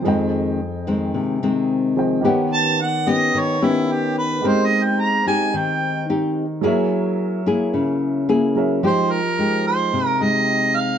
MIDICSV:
0, 0, Header, 1, 4, 480
1, 0, Start_track
1, 0, Key_signature, -4, "minor"
1, 0, Tempo, 548948
1, 39, Time_signature, 4, 2, 24, 8
1, 9602, End_track
2, 0, Start_track
2, 0, Title_t, "Harmonica"
2, 0, Program_c, 0, 22
2, 2214, Note_on_c, 0, 81, 100
2, 2464, Note_on_c, 0, 78, 85
2, 2477, Note_off_c, 0, 81, 0
2, 2703, Note_on_c, 0, 75, 87
2, 2716, Note_off_c, 0, 78, 0
2, 2965, Note_on_c, 0, 73, 82
2, 2978, Note_off_c, 0, 75, 0
2, 3187, Note_on_c, 0, 64, 65
2, 3200, Note_off_c, 0, 73, 0
2, 3426, Note_on_c, 0, 67, 71
2, 3439, Note_off_c, 0, 64, 0
2, 3649, Note_off_c, 0, 67, 0
2, 3655, Note_on_c, 0, 71, 84
2, 3909, Note_on_c, 0, 72, 80
2, 3922, Note_off_c, 0, 71, 0
2, 4072, Note_on_c, 0, 75, 77
2, 4085, Note_off_c, 0, 72, 0
2, 4224, Note_on_c, 0, 79, 88
2, 4237, Note_off_c, 0, 75, 0
2, 4376, Note_on_c, 0, 82, 100
2, 4389, Note_off_c, 0, 79, 0
2, 4606, Note_off_c, 0, 82, 0
2, 4611, Note_on_c, 0, 80, 93
2, 4866, Note_on_c, 0, 79, 92
2, 4879, Note_off_c, 0, 80, 0
2, 5334, Note_off_c, 0, 79, 0
2, 7750, Note_on_c, 0, 72, 83
2, 7970, Note_on_c, 0, 70, 87
2, 7983, Note_off_c, 0, 72, 0
2, 8446, Note_off_c, 0, 70, 0
2, 8456, Note_on_c, 0, 72, 85
2, 8806, Note_off_c, 0, 72, 0
2, 8806, Note_on_c, 0, 70, 85
2, 8933, Note_on_c, 0, 75, 93
2, 8946, Note_off_c, 0, 70, 0
2, 9407, Note_on_c, 0, 77, 92
2, 9420, Note_off_c, 0, 75, 0
2, 9602, Note_off_c, 0, 77, 0
2, 9602, End_track
3, 0, Start_track
3, 0, Title_t, "Grand piano"
3, 0, Program_c, 1, 0
3, 0, Control_c, 1, 64, 127
3, 14, Note_on_c, 1, 53, 55
3, 32, Note_on_c, 1, 68, 53
3, 43, Note_on_c, 1, 72, 50
3, 52, Control_c, 1, 64, 0
3, 55, Note_on_c, 1, 75, 53
3, 71, Note_on_c, 1, 79, 59
3, 223, Control_c, 1, 64, 127
3, 1675, Note_off_c, 1, 53, 0
3, 1684, Note_off_c, 1, 68, 0
3, 1690, Note_off_c, 1, 72, 0
3, 1695, Note_off_c, 1, 75, 0
3, 1703, Note_off_c, 1, 79, 0
3, 1713, Note_on_c, 1, 53, 48
3, 1717, Note_on_c, 1, 68, 40
3, 1729, Note_on_c, 1, 72, 41
3, 1731, Note_on_c, 1, 75, 43
3, 1739, Note_on_c, 1, 79, 48
3, 1933, Note_on_c, 1, 51, 54
3, 1947, Note_on_c, 1, 67, 49
3, 1957, Note_off_c, 1, 53, 0
3, 1959, Note_off_c, 1, 68, 0
3, 1959, Note_on_c, 1, 71, 52
3, 1965, Note_off_c, 1, 72, 0
3, 1966, Note_off_c, 1, 75, 0
3, 1970, Note_off_c, 1, 79, 0
3, 1973, Control_c, 1, 64, 0
3, 1975, Note_on_c, 1, 73, 48
3, 1983, Note_on_c, 1, 78, 68
3, 2134, Control_c, 1, 64, 127
3, 3833, Note_off_c, 1, 51, 0
3, 3840, Note_off_c, 1, 67, 0
3, 3846, Note_off_c, 1, 71, 0
3, 3851, Note_on_c, 1, 56, 48
3, 3854, Note_off_c, 1, 73, 0
3, 3858, Note_off_c, 1, 78, 0
3, 3866, Note_on_c, 1, 67, 47
3, 3881, Note_on_c, 1, 70, 49
3, 3894, Control_c, 1, 64, 0
3, 3895, Note_on_c, 1, 72, 46
3, 3903, Note_on_c, 1, 75, 59
3, 4037, Control_c, 1, 64, 127
3, 5751, Note_off_c, 1, 56, 0
3, 5758, Note_off_c, 1, 67, 0
3, 5766, Note_off_c, 1, 70, 0
3, 5773, Note_off_c, 1, 72, 0
3, 5777, Note_off_c, 1, 75, 0
3, 5783, Note_on_c, 1, 54, 58
3, 5796, Note_on_c, 1, 68, 53
3, 5805, Note_on_c, 1, 70, 59
3, 5814, Control_c, 1, 64, 0
3, 5819, Note_on_c, 1, 73, 58
3, 5836, Note_on_c, 1, 76, 68
3, 5958, Control_c, 1, 64, 127
3, 7438, Note_off_c, 1, 54, 0
3, 7445, Note_off_c, 1, 68, 0
3, 7449, Note_off_c, 1, 70, 0
3, 7456, Note_off_c, 1, 73, 0
3, 7465, Note_off_c, 1, 76, 0
3, 7479, Note_on_c, 1, 54, 44
3, 7485, Note_on_c, 1, 68, 44
3, 7489, Note_on_c, 1, 70, 46
3, 7497, Note_on_c, 1, 73, 41
3, 7505, Note_on_c, 1, 76, 52
3, 7719, Note_on_c, 1, 53, 47
3, 7720, Note_off_c, 1, 54, 0
3, 7723, Note_off_c, 1, 68, 0
3, 7725, Note_off_c, 1, 70, 0
3, 7726, Note_on_c, 1, 67, 43
3, 7729, Note_off_c, 1, 73, 0
3, 7733, Note_off_c, 1, 76, 0
3, 7734, Control_c, 1, 64, 0
3, 7759, Note_on_c, 1, 72, 41
3, 7769, Note_on_c, 1, 75, 49
3, 7889, Control_c, 1, 64, 127
3, 9602, Note_off_c, 1, 53, 0
3, 9602, Note_off_c, 1, 67, 0
3, 9602, Note_off_c, 1, 72, 0
3, 9602, Note_off_c, 1, 75, 0
3, 9602, End_track
4, 0, Start_track
4, 0, Title_t, "Nylon-string guitar"
4, 0, Program_c, 2, 24
4, 44, Note_on_c, 2, 41, 74
4, 48, Note_on_c, 2, 56, 59
4, 49, Note_on_c, 2, 51, 53
4, 53, Note_on_c, 2, 60, 56
4, 520, Note_off_c, 2, 51, 0
4, 522, Note_off_c, 2, 56, 0
4, 524, Note_off_c, 2, 60, 0
4, 761, Note_on_c, 2, 51, 61
4, 766, Note_on_c, 2, 56, 64
4, 770, Note_on_c, 2, 60, 62
4, 979, Note_off_c, 2, 41, 0
4, 1000, Note_on_c, 2, 48, 70
4, 1203, Note_off_c, 2, 51, 0
4, 1205, Note_off_c, 2, 56, 0
4, 1207, Note_off_c, 2, 60, 0
4, 1248, Note_on_c, 2, 51, 55
4, 1252, Note_on_c, 2, 56, 60
4, 1256, Note_on_c, 2, 60, 66
4, 1927, Note_off_c, 2, 51, 0
4, 1929, Note_off_c, 2, 56, 0
4, 1929, Note_off_c, 2, 60, 0
4, 1937, Note_off_c, 2, 48, 0
4, 1961, Note_on_c, 2, 51, 66
4, 1964, Note_on_c, 2, 59, 60
4, 1968, Note_on_c, 2, 61, 57
4, 1969, Note_on_c, 2, 67, 67
4, 2440, Note_off_c, 2, 59, 0
4, 2441, Note_off_c, 2, 61, 0
4, 2442, Note_off_c, 2, 67, 0
4, 2681, Note_on_c, 2, 59, 64
4, 2685, Note_on_c, 2, 61, 64
4, 2690, Note_on_c, 2, 67, 70
4, 2898, Note_off_c, 2, 51, 0
4, 2924, Note_on_c, 2, 51, 71
4, 3123, Note_off_c, 2, 59, 0
4, 3125, Note_off_c, 2, 61, 0
4, 3127, Note_off_c, 2, 67, 0
4, 3165, Note_on_c, 2, 59, 61
4, 3169, Note_on_c, 2, 67, 58
4, 3170, Note_on_c, 2, 61, 59
4, 3846, Note_off_c, 2, 59, 0
4, 3847, Note_off_c, 2, 61, 0
4, 3847, Note_off_c, 2, 67, 0
4, 3859, Note_off_c, 2, 51, 0
4, 3885, Note_on_c, 2, 56, 72
4, 3887, Note_on_c, 2, 60, 58
4, 3892, Note_on_c, 2, 67, 60
4, 3893, Note_on_c, 2, 63, 58
4, 4565, Note_off_c, 2, 60, 0
4, 4567, Note_off_c, 2, 63, 0
4, 4569, Note_off_c, 2, 67, 0
4, 4602, Note_on_c, 2, 60, 61
4, 4607, Note_on_c, 2, 63, 61
4, 4612, Note_on_c, 2, 67, 62
4, 4820, Note_off_c, 2, 56, 0
4, 4842, Note_on_c, 2, 51, 70
4, 5284, Note_off_c, 2, 60, 0
4, 5285, Note_off_c, 2, 63, 0
4, 5288, Note_off_c, 2, 67, 0
4, 5330, Note_on_c, 2, 60, 54
4, 5333, Note_on_c, 2, 63, 62
4, 5334, Note_on_c, 2, 67, 63
4, 5635, Note_off_c, 2, 60, 0
4, 5636, Note_off_c, 2, 63, 0
4, 5636, Note_off_c, 2, 67, 0
4, 5777, Note_off_c, 2, 51, 0
4, 5798, Note_on_c, 2, 54, 77
4, 5799, Note_on_c, 2, 58, 54
4, 5802, Note_on_c, 2, 64, 54
4, 5807, Note_on_c, 2, 68, 65
4, 6481, Note_off_c, 2, 58, 0
4, 6483, Note_off_c, 2, 64, 0
4, 6486, Note_off_c, 2, 68, 0
4, 6526, Note_on_c, 2, 58, 66
4, 6530, Note_on_c, 2, 64, 64
4, 6536, Note_on_c, 2, 68, 66
4, 6736, Note_off_c, 2, 54, 0
4, 6765, Note_on_c, 2, 49, 78
4, 7205, Note_off_c, 2, 58, 0
4, 7206, Note_off_c, 2, 64, 0
4, 7210, Note_off_c, 2, 68, 0
4, 7247, Note_on_c, 2, 58, 59
4, 7250, Note_on_c, 2, 64, 56
4, 7252, Note_on_c, 2, 68, 67
4, 7686, Note_off_c, 2, 58, 0
4, 7686, Note_off_c, 2, 64, 0
4, 7688, Note_off_c, 2, 68, 0
4, 7699, Note_off_c, 2, 49, 0
4, 7722, Note_on_c, 2, 53, 64
4, 7724, Note_on_c, 2, 56, 47
4, 7728, Note_on_c, 2, 63, 53
4, 7733, Note_on_c, 2, 67, 57
4, 8031, Note_off_c, 2, 56, 0
4, 8032, Note_off_c, 2, 63, 0
4, 8036, Note_off_c, 2, 67, 0
4, 8208, Note_on_c, 2, 56, 50
4, 8213, Note_on_c, 2, 63, 53
4, 8218, Note_on_c, 2, 67, 60
4, 8658, Note_off_c, 2, 53, 0
4, 8686, Note_on_c, 2, 48, 66
4, 8886, Note_off_c, 2, 56, 0
4, 8889, Note_off_c, 2, 63, 0
4, 8892, Note_off_c, 2, 67, 0
4, 8929, Note_on_c, 2, 56, 59
4, 8932, Note_on_c, 2, 63, 53
4, 8938, Note_on_c, 2, 67, 57
4, 9602, Note_off_c, 2, 48, 0
4, 9602, Note_off_c, 2, 56, 0
4, 9602, Note_off_c, 2, 63, 0
4, 9602, Note_off_c, 2, 67, 0
4, 9602, End_track
0, 0, End_of_file